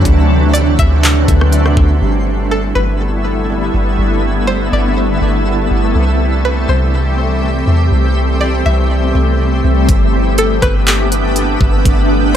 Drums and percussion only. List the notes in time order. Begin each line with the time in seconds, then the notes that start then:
0.05 kick, closed hi-hat
0.55 closed hi-hat
0.79 kick, closed hi-hat
1.04 clap, closed hi-hat
1.28 kick, closed hi-hat
1.41 cross-stick
1.52 closed hi-hat
1.66 cross-stick
1.77 kick
9.89 kick, closed hi-hat
10.38 closed hi-hat
10.62 kick, cross-stick, closed hi-hat
10.87 clap, closed hi-hat
11.12 closed hi-hat
11.36 closed hi-hat
11.61 kick
11.85 kick, closed hi-hat